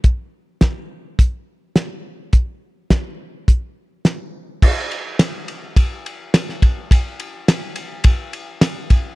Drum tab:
CC |----------------|----------------|x---------------|----------------|
RD |----------------|----------------|--x-x-x-x-x-x-x-|x-x-x-x-x-x-x-x-|
HH |x---x---x---x---|x---x---x---x---|----------------|----------------|
SD |----o-------o---|----o-------o---|----o-------oo--|----o-------o---|
BD |o---o---o-------|o---o---o-------|o-------o-----o-|o-------o-----o-|